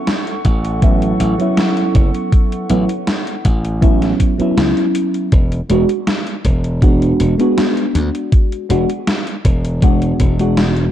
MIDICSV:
0, 0, Header, 1, 6, 480
1, 0, Start_track
1, 0, Tempo, 750000
1, 1488, Time_signature, 4, 2, 24, 8
1, 6988, End_track
2, 0, Start_track
2, 0, Title_t, "Ambient pad"
2, 0, Program_c, 0, 92
2, 0, Note_on_c, 0, 64, 82
2, 0, Note_on_c, 0, 69, 77
2, 0, Note_on_c, 0, 78, 75
2, 0, Note_on_c, 0, 85, 93
2, 3381, Note_off_c, 0, 85, 0
2, 3382, Note_off_c, 0, 69, 0
2, 3382, Note_off_c, 0, 78, 0
2, 3385, Note_off_c, 0, 64, 0
2, 6988, End_track
3, 0, Start_track
3, 0, Title_t, "FM electric piano"
3, 0, Program_c, 1, 5
3, 523, Note_on_c, 1, 54, 96
3, 527, Note_on_c, 1, 59, 88
3, 530, Note_on_c, 1, 61, 89
3, 533, Note_on_c, 1, 64, 105
3, 860, Note_off_c, 1, 54, 0
3, 863, Note_off_c, 1, 59, 0
3, 864, Note_off_c, 1, 61, 0
3, 866, Note_off_c, 1, 64, 0
3, 883, Note_on_c, 1, 54, 90
3, 890, Note_on_c, 1, 59, 82
3, 897, Note_on_c, 1, 61, 80
3, 904, Note_on_c, 1, 64, 99
3, 1696, Note_off_c, 1, 54, 0
3, 1699, Note_off_c, 1, 59, 0
3, 1703, Note_off_c, 1, 61, 0
3, 1706, Note_off_c, 1, 64, 0
3, 1724, Note_on_c, 1, 54, 91
3, 1727, Note_on_c, 1, 59, 83
3, 1730, Note_on_c, 1, 61, 80
3, 1733, Note_on_c, 1, 64, 100
3, 1844, Note_off_c, 1, 54, 0
3, 1846, Note_off_c, 1, 59, 0
3, 1847, Note_off_c, 1, 61, 0
3, 1849, Note_off_c, 1, 64, 0
3, 2439, Note_on_c, 1, 54, 94
3, 2443, Note_on_c, 1, 59, 86
3, 2445, Note_on_c, 1, 61, 87
3, 2449, Note_on_c, 1, 64, 106
3, 2778, Note_off_c, 1, 54, 0
3, 2781, Note_off_c, 1, 59, 0
3, 2782, Note_off_c, 1, 61, 0
3, 2784, Note_off_c, 1, 64, 0
3, 2803, Note_on_c, 1, 54, 88
3, 2809, Note_on_c, 1, 59, 82
3, 2815, Note_on_c, 1, 61, 81
3, 2823, Note_on_c, 1, 64, 99
3, 3389, Note_off_c, 1, 54, 0
3, 3392, Note_off_c, 1, 59, 0
3, 3395, Note_off_c, 1, 61, 0
3, 3399, Note_off_c, 1, 64, 0
3, 3644, Note_on_c, 1, 56, 88
3, 3649, Note_on_c, 1, 59, 79
3, 3651, Note_on_c, 1, 62, 82
3, 3654, Note_on_c, 1, 66, 98
3, 3764, Note_off_c, 1, 56, 0
3, 3767, Note_off_c, 1, 59, 0
3, 3767, Note_off_c, 1, 62, 0
3, 3769, Note_off_c, 1, 66, 0
3, 4364, Note_on_c, 1, 56, 94
3, 4367, Note_on_c, 1, 59, 86
3, 4371, Note_on_c, 1, 62, 84
3, 4372, Note_on_c, 1, 66, 103
3, 4701, Note_off_c, 1, 56, 0
3, 4702, Note_off_c, 1, 59, 0
3, 4705, Note_off_c, 1, 62, 0
3, 4705, Note_off_c, 1, 66, 0
3, 4724, Note_on_c, 1, 56, 89
3, 4730, Note_on_c, 1, 59, 82
3, 4737, Note_on_c, 1, 62, 83
3, 4742, Note_on_c, 1, 66, 99
3, 5536, Note_off_c, 1, 56, 0
3, 5539, Note_off_c, 1, 59, 0
3, 5542, Note_off_c, 1, 62, 0
3, 5545, Note_off_c, 1, 66, 0
3, 5563, Note_on_c, 1, 56, 90
3, 5567, Note_on_c, 1, 59, 82
3, 5571, Note_on_c, 1, 62, 82
3, 5573, Note_on_c, 1, 66, 99
3, 5684, Note_off_c, 1, 56, 0
3, 5686, Note_off_c, 1, 59, 0
3, 5688, Note_off_c, 1, 62, 0
3, 5689, Note_off_c, 1, 66, 0
3, 6287, Note_on_c, 1, 56, 97
3, 6290, Note_on_c, 1, 59, 86
3, 6293, Note_on_c, 1, 62, 87
3, 6295, Note_on_c, 1, 66, 106
3, 6622, Note_off_c, 1, 56, 0
3, 6624, Note_off_c, 1, 59, 0
3, 6626, Note_off_c, 1, 62, 0
3, 6627, Note_off_c, 1, 66, 0
3, 6651, Note_on_c, 1, 56, 90
3, 6653, Note_on_c, 1, 59, 81
3, 6656, Note_on_c, 1, 62, 80
3, 6661, Note_on_c, 1, 66, 100
3, 6988, Note_off_c, 1, 56, 0
3, 6988, Note_off_c, 1, 59, 0
3, 6988, Note_off_c, 1, 62, 0
3, 6988, Note_off_c, 1, 66, 0
3, 6988, End_track
4, 0, Start_track
4, 0, Title_t, "Slap bass"
4, 0, Program_c, 2, 36
4, 288, Note_on_c, 2, 33, 86
4, 716, Note_off_c, 2, 33, 0
4, 767, Note_on_c, 2, 33, 95
4, 857, Note_off_c, 2, 33, 0
4, 1248, Note_on_c, 2, 30, 92
4, 1338, Note_off_c, 2, 30, 0
4, 1726, Note_on_c, 2, 33, 101
4, 1817, Note_off_c, 2, 33, 0
4, 2207, Note_on_c, 2, 33, 86
4, 2636, Note_off_c, 2, 33, 0
4, 2926, Note_on_c, 2, 37, 100
4, 3017, Note_off_c, 2, 37, 0
4, 3407, Note_on_c, 2, 28, 99
4, 3583, Note_off_c, 2, 28, 0
4, 3647, Note_on_c, 2, 28, 102
4, 3737, Note_off_c, 2, 28, 0
4, 4127, Note_on_c, 2, 28, 85
4, 4556, Note_off_c, 2, 28, 0
4, 4609, Note_on_c, 2, 28, 95
4, 4698, Note_off_c, 2, 28, 0
4, 5088, Note_on_c, 2, 38, 96
4, 5178, Note_off_c, 2, 38, 0
4, 5567, Note_on_c, 2, 28, 102
4, 5658, Note_off_c, 2, 28, 0
4, 6046, Note_on_c, 2, 28, 89
4, 6475, Note_off_c, 2, 28, 0
4, 6527, Note_on_c, 2, 28, 86
4, 6956, Note_off_c, 2, 28, 0
4, 6988, End_track
5, 0, Start_track
5, 0, Title_t, "Muted slap bass strokes"
5, 2812, Note_on_c, 9, 29, 44
5, 2876, Note_off_c, 9, 29, 0
5, 6988, End_track
6, 0, Start_track
6, 0, Title_t, "Drums"
6, 46, Note_on_c, 9, 38, 109
6, 46, Note_on_c, 9, 42, 61
6, 110, Note_off_c, 9, 38, 0
6, 110, Note_off_c, 9, 42, 0
6, 174, Note_on_c, 9, 42, 38
6, 238, Note_off_c, 9, 42, 0
6, 287, Note_on_c, 9, 36, 56
6, 287, Note_on_c, 9, 42, 90
6, 351, Note_off_c, 9, 36, 0
6, 351, Note_off_c, 9, 42, 0
6, 414, Note_on_c, 9, 42, 39
6, 478, Note_off_c, 9, 42, 0
6, 527, Note_on_c, 9, 42, 63
6, 528, Note_on_c, 9, 36, 107
6, 591, Note_off_c, 9, 42, 0
6, 592, Note_off_c, 9, 36, 0
6, 653, Note_on_c, 9, 42, 37
6, 717, Note_off_c, 9, 42, 0
6, 769, Note_on_c, 9, 42, 90
6, 833, Note_off_c, 9, 42, 0
6, 894, Note_on_c, 9, 42, 38
6, 958, Note_off_c, 9, 42, 0
6, 1007, Note_on_c, 9, 38, 112
6, 1007, Note_on_c, 9, 42, 63
6, 1071, Note_off_c, 9, 38, 0
6, 1071, Note_off_c, 9, 42, 0
6, 1132, Note_on_c, 9, 42, 39
6, 1196, Note_off_c, 9, 42, 0
6, 1248, Note_on_c, 9, 36, 98
6, 1248, Note_on_c, 9, 42, 89
6, 1312, Note_off_c, 9, 36, 0
6, 1312, Note_off_c, 9, 42, 0
6, 1373, Note_on_c, 9, 42, 36
6, 1437, Note_off_c, 9, 42, 0
6, 1488, Note_on_c, 9, 36, 116
6, 1488, Note_on_c, 9, 42, 67
6, 1552, Note_off_c, 9, 36, 0
6, 1552, Note_off_c, 9, 42, 0
6, 1615, Note_on_c, 9, 42, 38
6, 1679, Note_off_c, 9, 42, 0
6, 1726, Note_on_c, 9, 42, 90
6, 1790, Note_off_c, 9, 42, 0
6, 1851, Note_on_c, 9, 42, 41
6, 1915, Note_off_c, 9, 42, 0
6, 1967, Note_on_c, 9, 38, 109
6, 1967, Note_on_c, 9, 42, 65
6, 2031, Note_off_c, 9, 38, 0
6, 2031, Note_off_c, 9, 42, 0
6, 2093, Note_on_c, 9, 42, 39
6, 2157, Note_off_c, 9, 42, 0
6, 2207, Note_on_c, 9, 42, 92
6, 2208, Note_on_c, 9, 36, 59
6, 2271, Note_off_c, 9, 42, 0
6, 2272, Note_off_c, 9, 36, 0
6, 2334, Note_on_c, 9, 42, 40
6, 2398, Note_off_c, 9, 42, 0
6, 2447, Note_on_c, 9, 36, 108
6, 2448, Note_on_c, 9, 42, 67
6, 2511, Note_off_c, 9, 36, 0
6, 2512, Note_off_c, 9, 42, 0
6, 2573, Note_on_c, 9, 38, 36
6, 2573, Note_on_c, 9, 42, 39
6, 2637, Note_off_c, 9, 38, 0
6, 2637, Note_off_c, 9, 42, 0
6, 2687, Note_on_c, 9, 36, 58
6, 2688, Note_on_c, 9, 42, 95
6, 2751, Note_off_c, 9, 36, 0
6, 2752, Note_off_c, 9, 42, 0
6, 2814, Note_on_c, 9, 42, 39
6, 2878, Note_off_c, 9, 42, 0
6, 2929, Note_on_c, 9, 38, 111
6, 2929, Note_on_c, 9, 42, 67
6, 2993, Note_off_c, 9, 38, 0
6, 2993, Note_off_c, 9, 42, 0
6, 3053, Note_on_c, 9, 42, 39
6, 3117, Note_off_c, 9, 42, 0
6, 3167, Note_on_c, 9, 42, 95
6, 3231, Note_off_c, 9, 42, 0
6, 3292, Note_on_c, 9, 42, 39
6, 3356, Note_off_c, 9, 42, 0
6, 3406, Note_on_c, 9, 42, 71
6, 3407, Note_on_c, 9, 36, 118
6, 3470, Note_off_c, 9, 42, 0
6, 3471, Note_off_c, 9, 36, 0
6, 3532, Note_on_c, 9, 42, 41
6, 3596, Note_off_c, 9, 42, 0
6, 3646, Note_on_c, 9, 42, 98
6, 3710, Note_off_c, 9, 42, 0
6, 3772, Note_on_c, 9, 42, 41
6, 3836, Note_off_c, 9, 42, 0
6, 3886, Note_on_c, 9, 38, 116
6, 3886, Note_on_c, 9, 42, 70
6, 3950, Note_off_c, 9, 38, 0
6, 3950, Note_off_c, 9, 42, 0
6, 4011, Note_on_c, 9, 42, 41
6, 4075, Note_off_c, 9, 42, 0
6, 4126, Note_on_c, 9, 36, 61
6, 4126, Note_on_c, 9, 42, 97
6, 4190, Note_off_c, 9, 36, 0
6, 4190, Note_off_c, 9, 42, 0
6, 4252, Note_on_c, 9, 42, 42
6, 4316, Note_off_c, 9, 42, 0
6, 4366, Note_on_c, 9, 36, 117
6, 4367, Note_on_c, 9, 42, 67
6, 4430, Note_off_c, 9, 36, 0
6, 4431, Note_off_c, 9, 42, 0
6, 4494, Note_on_c, 9, 42, 42
6, 4558, Note_off_c, 9, 42, 0
6, 4608, Note_on_c, 9, 42, 100
6, 4672, Note_off_c, 9, 42, 0
6, 4734, Note_on_c, 9, 42, 41
6, 4798, Note_off_c, 9, 42, 0
6, 4850, Note_on_c, 9, 38, 119
6, 4850, Note_on_c, 9, 42, 70
6, 4914, Note_off_c, 9, 38, 0
6, 4914, Note_off_c, 9, 42, 0
6, 4974, Note_on_c, 9, 42, 41
6, 5038, Note_off_c, 9, 42, 0
6, 5089, Note_on_c, 9, 42, 98
6, 5153, Note_off_c, 9, 42, 0
6, 5214, Note_on_c, 9, 42, 39
6, 5278, Note_off_c, 9, 42, 0
6, 5326, Note_on_c, 9, 36, 127
6, 5327, Note_on_c, 9, 42, 71
6, 5390, Note_off_c, 9, 36, 0
6, 5391, Note_off_c, 9, 42, 0
6, 5454, Note_on_c, 9, 42, 40
6, 5518, Note_off_c, 9, 42, 0
6, 5568, Note_on_c, 9, 42, 99
6, 5632, Note_off_c, 9, 42, 0
6, 5693, Note_on_c, 9, 42, 42
6, 5757, Note_off_c, 9, 42, 0
6, 5807, Note_on_c, 9, 38, 121
6, 5807, Note_on_c, 9, 42, 69
6, 5871, Note_off_c, 9, 38, 0
6, 5871, Note_off_c, 9, 42, 0
6, 5932, Note_on_c, 9, 42, 42
6, 5996, Note_off_c, 9, 42, 0
6, 6047, Note_on_c, 9, 36, 63
6, 6047, Note_on_c, 9, 42, 98
6, 6111, Note_off_c, 9, 36, 0
6, 6111, Note_off_c, 9, 42, 0
6, 6173, Note_on_c, 9, 42, 43
6, 6237, Note_off_c, 9, 42, 0
6, 6287, Note_on_c, 9, 36, 119
6, 6288, Note_on_c, 9, 42, 70
6, 6351, Note_off_c, 9, 36, 0
6, 6352, Note_off_c, 9, 42, 0
6, 6412, Note_on_c, 9, 42, 42
6, 6476, Note_off_c, 9, 42, 0
6, 6526, Note_on_c, 9, 42, 100
6, 6527, Note_on_c, 9, 36, 64
6, 6590, Note_off_c, 9, 42, 0
6, 6591, Note_off_c, 9, 36, 0
6, 6652, Note_on_c, 9, 42, 41
6, 6716, Note_off_c, 9, 42, 0
6, 6767, Note_on_c, 9, 38, 124
6, 6767, Note_on_c, 9, 42, 70
6, 6831, Note_off_c, 9, 38, 0
6, 6831, Note_off_c, 9, 42, 0
6, 6890, Note_on_c, 9, 42, 42
6, 6954, Note_off_c, 9, 42, 0
6, 6988, End_track
0, 0, End_of_file